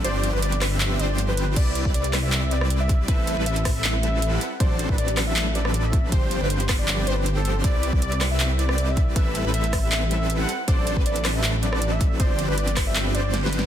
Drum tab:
CC |------------------------------------------------|x-----------------------------------------------|------------------------------------------------|------------------------------------------------|
HH |x-----x-----x--x--o-----x-----x-----x-----x-----|x-----x-----x--x--o-----x-----x-----x-----x-----|x-----x-----x--x--o-----x-----x-----x-----x-----|x-----x-----x--x--o-----x-----x-----x-----x-----|
CP |------------------x-----x-----------------------|------------------x-----x-----------------------|------------------------x-----------------------|------------------x-----x-----------------------|
SD |------------------r-----------------------------|------------------r--------------r--------------|------------------r-----------------------------|------------------r--------------r--------------|
BD |------------------------------------------------|o--------o--------------------------------o-----|o-----------------o-----------------------------|o--------o--------------------------------o-----|

CC |------------------------------------------------|------------------------------------------------|------------------------------------------------|------------------------------------------------|
HH |x-----x-----x--x--o-----x-----x-----x-----x-----|x-----x-----x--x--o-----x-----x-----x-----x-----|x-----x-----x--x--o-----x-----x-----x-----x-----|x-----x-----x--x--o-----x-----x-----x-----x-----|
CP |------------------x-----x-----------------------|------------------x-----x-----------------------|------------------------x-----------------------|------------------x-----x-----------------------|
SD |------------------r-----------------------------|------------------r--------------r--------------|------------------r-----------------------------|------------------r--------------r--------------|
BD |o-----------------o-----------------------------|o--------o--------------------------------o-----|o-----------------o-----------------------------|o--------o--------------------------------o-----|

CC |------------------------------------------------|
HH |x-----x-----x--x--o-----x-----x-----x-----x-----|
CP |------------------x-----x-----------------------|
SD |------------------r-----------------o---o---o---|
BD |o-----------------o-----------------------------|